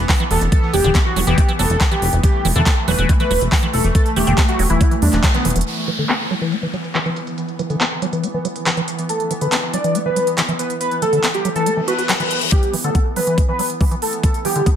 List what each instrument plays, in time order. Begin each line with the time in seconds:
Already playing: synth texture E3 B3
0.09 acid bass E3, kick, clap, open hi-hat
0.20 acid bass E3, closed hi-hat
0.31 analog synth bass E1, analog synth lead A4, open hi-hat
0.41 analog synth bass E1, closed hi-hat
0.52 analog synth lead A4, kick, closed hi-hat
0.73 analog synth bass E1, acid bass E3, analog synth lead G4, open hi-hat
0.84 analog synth bass E1, acid bass D3, closed hi-hat
0.95 acid bass B3, kick, clap, closed hi-hat
1.06 analog synth lead F#4
1.16 analog synth bass E1, acid bass F#3, open hi-hat
1.27 analog synth bass E1, acid bass E3, analog synth lead G4, closed hi-hat
1.38 acid bass B3, kick, closed hi-hat
1.48 acid bass E3, closed hi-hat
1.59 analog synth bass E1, acid bass F#3, analog synth lead A4, open hi-hat
1.70 analog synth bass E1, closed hi-hat
1.81 acid bass E3, kick, clap, closed hi-hat
1.91 acid bass E3, analog synth lead G4, closed hi-hat
2.02 analog synth bass E1, open hi-hat
2.13 analog synth bass E1, closed hi-hat
2.23 synth texture A3, analog synth lead G4, kick, closed hi-hat
2.45 analog synth bass E1, acid bass E3, open hi-hat
2.56 analog synth bass E1, acid bass D3, analog synth lead A4, closed hi-hat
2.66 acid bass B3, kick, clap, closed hi-hat
2.88 analog synth bass E1, acid bass F#3, analog synth lead B4, open hi-hat
2.98 analog synth bass E1, acid bass E3, closed hi-hat
3.09 acid bass B3, kick, closed hi-hat
3.20 acid bass E3, analog synth lead B4, closed hi-hat
3.31 analog synth bass E1, acid bass F#3, open hi-hat
3.41 analog synth bass E1, closed hi-hat
3.52 acid bass E3, kick, clap, open hi-hat
3.63 acid bass E3, closed hi-hat
3.74 analog synth bass E1, analog synth lead A4, open hi-hat
3.84 analog synth bass E1, closed hi-hat
3.95 analog synth lead A4, kick, closed hi-hat
4.06 closed hi-hat
4.16 analog synth bass E1, acid bass E3, analog synth lead G4, open hi-hat
4.27 analog synth bass E1, acid bass D3, closed hi-hat
4.38 acid bass B3, kick, clap, closed hi-hat
4.48 analog synth lead F#4, closed hi-hat
4.59 analog synth bass E1, acid bass F#3, open hi-hat
4.70 analog synth bass E1, acid bass E3, analog synth lead E4, closed hi-hat
4.81 acid bass B3, kick, closed hi-hat
4.91 acid bass E3, closed hi-hat
5.02 analog synth bass E2, acid bass G3, analog synth lead D4, open hi-hat
5.13 analog synth bass E1, clap, closed hi-hat
5.24 acid bass F#3, kick, clap, closed hi-hat
5.34 acid bass E3, analog synth lead B3, closed hi-hat
5.45 analog synth bass E1, acid bass E3, closed hi-hat, open hi-hat
5.50 closed hi-hat
5.56 analog synth bass E1, acid bass E3, closed hi-hat
5.61 closed hi-hat
5.66 synth texture E3 B3, closed hi-hat, downlifter
5.77 closed hi-hat
5.88 acid bass E3, closed hi-hat
5.98 acid bass D3, closed hi-hat
6.09 acid bass B3, clap, closed hi-hat
6.31 acid bass F#3, closed hi-hat
6.41 acid bass E3, closed hi-hat
6.52 acid bass B3, closed hi-hat
6.63 acid bass E3
6.73 acid bass F#3, closed hi-hat
6.84 closed hi-hat
6.95 acid bass E3, clap, closed hi-hat
7.06 acid bass E3, closed hi-hat
7.16 closed hi-hat
7.27 closed hi-hat
7.38 closed hi-hat
7.49 closed hi-hat
7.59 acid bass E3, closed hi-hat
7.70 acid bass D3, closed hi-hat
7.81 acid bass B3, clap, closed hi-hat
8.02 acid bass F#3, closed hi-hat
8.13 acid bass E3, closed hi-hat
8.23 acid bass B3, closed hi-hat
8.34 acid bass E3
8.45 acid bass F#3, closed hi-hat
8.56 closed hi-hat
8.66 acid bass E3, clap, closed hi-hat
8.77 acid bass E3, closed hi-hat
8.88 closed hi-hat
8.99 closed hi-hat
9.09 analog synth lead A4, closed hi-hat
9.20 closed hi-hat
9.31 acid bass E3, closed hi-hat
9.41 acid bass D3, analog synth lead B4, closed hi-hat
9.52 acid bass B3, clap, closed hi-hat
9.74 acid bass F#3, analog synth lead D5, closed hi-hat
9.84 acid bass E3, closed hi-hat
9.95 acid bass B3, closed hi-hat
10.06 acid bass E3, analog synth lead B4
10.16 acid bass F#3, closed hi-hat
10.27 closed hi-hat
10.38 acid bass E3, clap, closed hi-hat
10.48 acid bass E3, closed hi-hat
10.59 analog synth lead B4, closed hi-hat
10.70 closed hi-hat
10.81 analog synth lead B4, closed hi-hat
10.91 closed hi-hat
11.02 acid bass E3, analog synth lead A4, closed hi-hat
11.13 acid bass D3, closed hi-hat
11.23 acid bass B3, clap, closed hi-hat
11.34 analog synth lead G4, closed hi-hat
11.45 acid bass F#3, closed hi-hat
11.56 acid bass E3, analog synth lead A4, closed hi-hat
11.66 acid bass B3, closed hi-hat, reverse cymbal
11.77 acid bass E3
11.88 acid bass F#4, analog synth lead B4, closed hi-hat
11.98 acid bass F#4, closed hi-hat
12.09 acid bass F#3, clap, closed hi-hat
12.20 acid bass E3, analog synth lead B4, closed hi-hat
12.31 closed hi-hat
12.41 closed hi-hat
12.52 synth texture E3 B3, analog synth lead G4, kick, closed hi-hat
12.63 closed hi-hat
12.73 acid bass E3, open hi-hat
12.84 acid bass D3, analog synth lead A4, closed hi-hat
12.95 acid bass B3, kick, closed hi-hat
13.16 acid bass F#3, analog synth lead B4, open hi-hat
13.27 acid bass E3, closed hi-hat
13.38 acid bass B3, kick, closed hi-hat
13.48 acid bass E3, analog synth lead B4
13.59 acid bass F#3, open hi-hat
13.70 closed hi-hat
13.81 acid bass E3, kick, open hi-hat
13.91 acid bass E3, closed hi-hat
14.02 analog synth lead A4, open hi-hat
14.13 closed hi-hat
14.23 analog synth lead A4, kick, closed hi-hat
14.34 closed hi-hat
14.45 acid bass E3, analog synth lead G4, open hi-hat
14.56 acid bass D3, closed hi-hat
14.66 acid bass B3, kick, closed hi-hat